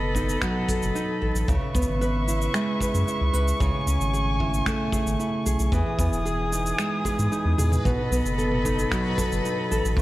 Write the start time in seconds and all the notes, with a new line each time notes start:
Already playing: F#1 B2 B3 A4 D#5 B5
0.15 D#4, kick, cabasa
0.29 cabasa
0.42 F#3, finger snap, kick, cabasa
0.68 A4, kick, cabasa
0.82 F#1, cabasa
0.95 D#4, cabasa
1.22 A1 A4
1.34 A1, cabasa
1.48 C#2 C#3 B4 E5 C#6, kick, cabasa
1.74 C#2 B3, kick, cabasa
1.82 cabasa
1.88 G#1
2.01 B4, cabasa
2.28 E4, cabasa
2.42 cabasa
2.54 G#3, finger snap, cabasa
2.80 B4, kick, cabasa
2.94 F#2, cabasa
3.07 E4, cabasa
3.21 C#2
3.33 C#2 B4, cabasa
3.48 cabasa
3.60 C#2 C#3 A3 G#5, kick, cabasa
3.87 C#2 C#4, cabasa
4.00 G#1, cabasa
4.13 G#4, cabasa
4.40 E4, kick
4.54 cabasa
4.66 A3, finger snap, kick, cabasa
4.92 G#4, kick, cabasa
5.06 G#1, cabasa
5.19 E4, cabasa
5.46 B1 G#4, cabasa
5.59 B1, cabasa
5.71 E2 E3 G#4 B4 B5 D#6, kick, cabasa
5.99 E2 B3, kick, cabasa
6.12 E1, cabasa
6.25 G#4, cabasa
6.52 D#4, cabasa
6.66 cabasa
6.78 G#3, finger snap, cabasa
7.05 G#4, kick, cabasa
7.19 G#2, cabasa
7.32 D#4, cabasa
7.45 E2
7.58 E2 G#4, mid tom, cabasa
7.72 mid tom, cabasa
7.84 B1 B2 A4 D#5 B5, kick, mid tom, cabasa
8.11 B1 B3, cabasa
8.25 F#1, cabasa
8.38 A4, cabasa
8.52 mid tom
8.65 D#4, kick, cabasa
8.79 cabasa
8.92 F#3, finger snap, kick, cabasa
9.18 A4, kick, cabasa
9.31 F#1, cabasa
9.45 D#4, cabasa
9.71 A1 A4, cabasa
9.85 A1, cabasa
9.97 C#2 C#3 E5, kick, cabasa